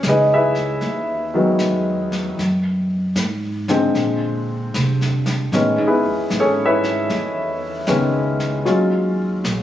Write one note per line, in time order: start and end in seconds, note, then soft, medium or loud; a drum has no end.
0.00 0.80 C#2 medium
0.00 2.41 C#4 soft
0.00 2.41 C#5 medium
0.00 snare soft
0.00 hi-hat pedal medium
0.08 0.32 D#4 medium
0.08 0.32 G#4 medium
0.08 0.31 B4 medium
0.08 0.32 D#5 medium
0.34 1.07 E4 medium
0.34 1.07 G#4 medium
0.34 1.07 B4 medium
0.34 1.06 E5 medium
0.55 snare soft
0.81 1.58 D#2 medium
0.81 brush sweep soft
0.81 snare soft
1.34 2.34 D#3 medium
1.34 2.34 F#3 medium
1.34 2.34 G#3 soft
1.34 2.34 B3 medium
1.59 2.36 E2 medium
1.59 snare soft
1.59 hi-hat pedal medium
2.12 snare soft
2.39 3.15 F#2 medium
2.39 brush sweep soft
2.39 snare soft
3.15 3.93 G#2 medium
3.15 snare soft
3.15 hi-hat pedal soft
3.68 4.69 D3 medium
3.68 4.69 F3 medium
3.68 4.69 G#3 medium
3.68 4.70 C4 medium
3.68 snare soft
3.94 4.71 A#2 medium
3.94 brush sweep soft
3.94 snare soft
4.74 5.51 C3 medium
4.74 snare soft
4.74 hi-hat pedal soft
5.01 snare soft
5.26 snare soft
5.52 5.78 A2 medium
5.52 6.00 D#3 soft
5.52 6.00 G#3 soft
5.52 5.86 B3 soft
5.52 6.00 C#4 medium
5.52 brush sweep soft
5.52 snare soft
5.78 6.05 G#2 soft
5.87 6.32 B3 soft
5.87 6.32 E4 soft
5.87 6.32 G#4 soft
5.87 6.32 B4 medium
6.06 6.30 E2 medium
6.30 7.08 G#2 medium
6.30 snare soft
6.30 hi-hat pedal soft
6.40 6.61 C#4 medium
6.40 6.61 G#4 medium
6.40 6.62 A4 medium
6.40 6.61 C#5 medium
6.66 7.36 E4 medium
6.66 7.36 B4 medium
6.66 7.36 C#5 medium
6.66 7.36 E5 medium
6.84 snare soft
7.09 7.86 E2 medium
7.09 brush sweep soft
7.09 snare soft
7.87 8.64 C#2 medium
7.87 8.66 D#3 medium
7.87 8.64 G#3 medium
7.87 8.66 B3 soft
7.87 8.64 C#4 medium
7.87 snare soft
7.87 hi-hat pedal soft
8.40 snare soft
8.65 9.42 D#2 medium
8.65 9.13 F#3 medium
8.65 9.13 G#3 soft
8.65 9.13 C#4 soft
8.65 9.13 F4 medium
8.65 brush sweep soft
8.65 snare soft
9.44 9.63 A#1 medium
9.44 snare medium
9.44 hi-hat pedal soft